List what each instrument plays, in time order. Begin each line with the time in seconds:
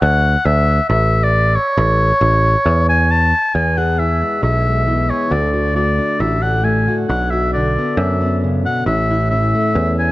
0.01 picked electric bass D2, oboe F#5
0.45 picked electric bass D2, oboe E5
0.89 picked electric bass A1, oboe E5
1.23 oboe D5
1.55 oboe C#5
1.78 picked electric bass A1
2.21 picked electric bass A1
2.66 picked electric bass E2
2.89 oboe G#5
3.11 oboe A5
3.55 picked electric bass E2, steel-string acoustic guitar E2 B3, oboe G#5
3.77 steel-string acoustic guitar G#4, oboe F#5
3.99 steel-string acoustic guitar E3 B3, oboe E5
4.22 steel-string acoustic guitar G#3
4.42 picked electric bass B1, steel-string acoustic guitar B2 B3, oboe E5
4.66 steel-string acoustic guitar G#3
4.87 steel-string acoustic guitar E3
5.09 steel-string acoustic guitar G#4, oboe C#5
5.30 picked electric bass D2, steel-string acoustic guitar D3 F#4, oboe D5
5.53 steel-string acoustic guitar F#4
5.75 steel-string acoustic guitar A3 F#4, oboe D5
5.98 steel-string acoustic guitar D4
6.20 picked electric bass A1, steel-string acoustic guitar A2 F#4, oboe E5
6.42 steel-string acoustic guitar D4, oboe F#5
6.64 steel-string acoustic guitar A3, oboe G#5
6.88 steel-string acoustic guitar F#4
7.08 picked electric bass B1, steel-string acoustic guitar B2 D4, oboe F#5
7.30 steel-string acoustic guitar F#4, oboe E5
7.53 steel-string acoustic guitar D3 D4, oboe D5
7.79 steel-string acoustic guitar B3
7.97 picked electric bass F#2, steel-string acoustic guitar F#2 D4, oboe E5
8.21 steel-string acoustic guitar B3
8.44 steel-string acoustic guitar C#3
8.66 steel-string acoustic guitar B2, oboe F#5
8.86 picked electric bass A1, steel-string acoustic guitar A2 C#4, oboe E5
9.10 steel-string acoustic guitar E4
9.30 steel-string acoustic guitar E3 C#4, oboe E5
9.55 steel-string acoustic guitar A3
9.75 steel-string acoustic guitar E2 C#4, picked electric bass E2
9.99 steel-string acoustic guitar A3, oboe G#5